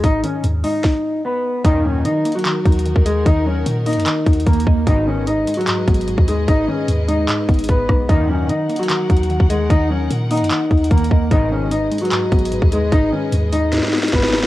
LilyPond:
<<
  \new Staff \with { instrumentName = "String section" } { \time 4/4 \key ees \minor \tempo 4 = 149 r1 | <ees ees' ges' bes'>1~ | <ees ees' ges' bes'>1 | <aes aes' ces'' ees''>1~ |
<aes aes' ces'' ees''>1 | <ees ees' bes' ges''>1~ | <ees ees' bes' ges''>1 | <aes aes' ces'' ees''>1~ |
<aes aes' ces'' ees''>1 | }
  \new Staff \with { instrumentName = "Clean electric guitar" } { \time 4/4 \key ees \minor <ees' ees''>8 <des' des''>8 r8 <ees' ees''>4. <ces' ces''>4 | <ees' ees''>8 <des' des''>8 <ees' ees''>8. <ges ges'>4.~ <ges ges'>16 <aes aes'>8 | <ees' ees''>8 <des' des''>8 r8 <ees' ees''>4. <bes bes'>4 | <ees' ees''>8 <des' des''>8 <ees' ees''>8. <ges ges'>4.~ <ges ges'>16 <aes aes'>8 |
<ees' ees''>8 <des' des''>8 r8 <ees' ees''>4. <ces' ces''>4 | <ees' ees''>8 <des' des''>8 <ees' ees''>8. <ges ges'>4.~ <ges ges'>16 <aes aes'>8 | <ees' ees''>8 <des' des''>8 r8 <ees' ees''>4. <bes bes'>4 | <ees' ees''>8 <des' des''>8 <ees' ees''>8. <ges ges'>4.~ <ges ges'>16 <aes aes'>8 |
<ees' ees''>8 <des' des''>8 r8 <ees' ees''>4. <ces' ces''>4 | }
  \new Staff \with { instrumentName = "Synth pluck" } { \clef bass \time 4/4 \key ees \minor <aes, ces' ees'>8 ees8 aes,8 aes2~ aes8 | ees8 ges8 ees8 bes8 ees8 ees'8 ees8 ees''8 | ees8 ges8 ees8 bes8 ees8 ees'8 ees8 ees''8 | aes,8 ees8 aes,8 aes8 aes,8 ces'8 aes,8 ees'8 |
aes,8 ees8 aes,8 aes8 aes,8 ces'8 aes,8 ees'8 | ees8 ges8 ees8 bes8 ees8 ees'8 ees8 ees''8 | ees8 ges8 ees8 bes8 ees8 ees'8 ees8 ees''8 | aes,8 ees8 aes,8 aes8 aes,8 ces'8 aes,8 ees'8 |
aes,8 ees8 aes,8 aes8 aes,8 ces'8 aes,8 ees'8 | }
  \new Staff \with { instrumentName = "Analog polysynth" } { \clef bass \time 4/4 \key ees \minor r1 | <ges, bes, ees>4 r2. | r1 | <aes, ces ees>4 r2. |
r1 | <ges, bes, ees>4 r2. | r1 | <aes, ces ees>4 r2. |
r1 | }
  \new Staff \with { instrumentName = "808-style bass" } { \clef bass \time 4/4 \key ees \minor aes,,8 r8 ees,8 r2 r8 | ees,4 ees8 r4 ees,8. ees,8. | ees,4 bes,8. ges,16 r8 ees,8 ees,8 ees,8 | aes,,4. r4 aes,,8. ees,8. |
aes,,8 r8 ees,4 r8 aes,,8 aes,,8 ces,8 | ees,4 ees8 r4 ees,8. ees,8. | ees,4 bes,8. ges,16 r8 ees,8 ees,8 ees,8 | aes,,4. r4 aes,,8. ees,8. |
aes,,8 r8 ees,4~ ees,16 r8. aes,,8 ges,,16 aes,,16 | }
  \new DrumStaff \with { instrumentName = "Drums" } \drummode { \time 4/4 <hh bd>8 hh8 hh8 hho8 <bd sn>4 r4 | <hh bd>4 \tuplet 3/2 { hh16 r16 r16 hh16 hh16 hh16 <hc hh>16 r16 r16 <hh bd>16 hh16 hh16 } hh16 bd16 hh8 | <hh bd>4 \tuplet 3/2 { hh16 r16 r16 <hh hho>16 hh16 hh16 <hc hh>16 r16 r16 <hh bd>16 hh16 hh16 <hh bd>16 hh16 hh16 bd16 r16 r16 } | <hh bd>4 \tuplet 3/2 { hh16 r16 r16 hh16 hh16 hh16 <hc hh>16 r16 r16 <hh bd>16 hh16 hh16 } hh16 bd16 hh8 |
<hh bd>4 hh8 hh8 <hc hh>8 <hh bd>32 hh32 hh32 hh32 <hh bd>8 <bd ss>8 | <hh bd>4 \tuplet 3/2 { hh16 r16 r16 hh16 hh16 hh16 <hc hh>16 r16 r16 <hh bd>16 hh16 hh16 } hh16 bd16 hh8 | <hh bd>4 \tuplet 3/2 { hh16 r16 r16 <hh hho>16 hh16 hh16 <hc hh>16 r16 r16 <hh bd>16 hh16 hh16 <hh bd>16 hh16 hh16 bd16 r16 r16 } | <hh bd>4 \tuplet 3/2 { hh16 r16 r16 hh16 hh16 hh16 <hc hh>16 r16 r16 <hh bd>16 hh16 hh16 } hh16 bd16 hh8 |
<hh bd>4 hh8 hh8 <hh sn>32 sn32 sn32 sn32 <hh sn>32 <hh sn>32 <hh sn>32 <hh sn>32 <hh bd sn>32 sn32 sn32 sn32 sn32 sn32 sn16 | }
>>